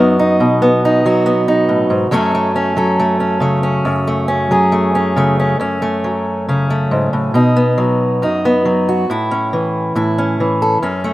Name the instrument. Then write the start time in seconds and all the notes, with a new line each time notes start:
steel-string acoustic guitar
Already playing: F#2 F#3 B3 D#4 F#4
0.19 D#4
0.40 B2
0.62 B3
0.85 D#4
1.05 F#3 F#4
1.26 B3
1.48 D#4
1.69 A2
1.90 G#2
2.11 F#2 F#3 A3 C#4 A4
2.35 A3
2.56 C#4
2.77 F#3 A4
3.00 A3
3.20 C#4
3.40 C#3 A3
3.63 C#4
3.85 F#2
4.07 A3
4.28 C#4
4.51 F#3 G#4
4.72 A3
4.95 C#4
5.16 C#3 A3
5.40 C#4
5.60 F#2 C#4
5.82 A3
6.04 F#3
6.48 C#3 C#4
6.70 A3
6.91 G#2
7.13 A2
7.34 B2 D#4
7.56 B3
7.78 F#3
8.22 F#2 D#4
8.45 B3
8.65 F#3
8.89 F#4
9.10 A2 E4
9.31 C#4
9.53 E3
9.95 A2 E4
10.18 C#4
10.40 E3
10.62 A4
10.82 F#2 C#4
11.04 A3